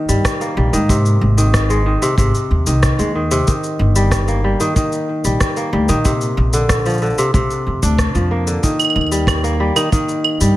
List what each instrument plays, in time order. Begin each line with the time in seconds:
Already playing: kora D#3 A#3
0.09 upright bass G2, kora G3, shaker
0.25 kick, cross-stick, shaker
0.41 kora A#3, shaker
0.57 upright bass A#1, kora G3
0.73 upright bass G#2, kora D#3, shaker
0.89 kora C3, kick, shaker
1.06 shaker
1.21 upright bass G#1
1.38 kora D#3, shaker
1.54 kick, cross-stick, shaker
1.70 kora G#3, shaker
1.86 kora D#3
2.02 kora C3, shaker
2.18 upright bass G#1, kora C3, kick, shaker
2.35 shaker
2.51 upright bass D#2
2.66 upright bass C2, kora D#3, shaker
2.83 kick, cross-stick, shaker
2.99 upright bass D#2, kora G#3, shaker
3.15 kora D#3
3.31 kora C3, shaker
3.47 kora D#3, kick, shaker
3.63 shaker
3.79 upright bass G1
3.96 kora G3, shaker
4.11 kick, cross-stick, shaker
4.28 kora A#3, shaker
4.44 kora G3
4.60 kora D#3, shaker
4.76 kora D#3, kick, shaker
4.92 shaker
5.24 upright bass A#1, kora G3, shaker
5.40 kick, cross-stick, shaker
5.56 kora A#3, shaker
5.73 upright bass D2, kora G3
5.89 upright bass A#2, kora D#3, shaker
6.05 kora C3, kick, shaker
6.21 shaker
6.37 upright bass A#1
6.53 kora D3, shaker
6.69 kick, cross-stick, shaker
6.86 kora F3, shaker
6.89 shaker
6.94 shaker
6.98 shaker
7.02 kora D3, shaker
7.06 shaker
7.10 shaker
7.14 shaker
7.18 kora C3, shaker
7.34 upright bass A#1, kora C3, kick, shaker
7.50 shaker
7.66 upright bass F2
7.82 upright bass D2, kora D4, shaker
7.98 kick, cross-stick, shaker
8.15 upright bass F2, kora F3, shaker
8.31 kora A#3
8.47 kora D3, shaker
8.63 kora D#3, kick, shaker
8.79 claves, shaker
8.85 claves
8.90 claves
8.96 upright bass D#2, claves
9.01 claves
9.06 claves
9.12 kora G3, shaker
9.27 kick, cross-stick, claves, shaker
9.44 kora A#3, shaker
9.60 kora G3
9.76 kora D#3, claves, shaker
9.92 kora D#3, kick, shaker
10.09 shaker
10.24 claves
10.41 upright bass G2, kora G3, shaker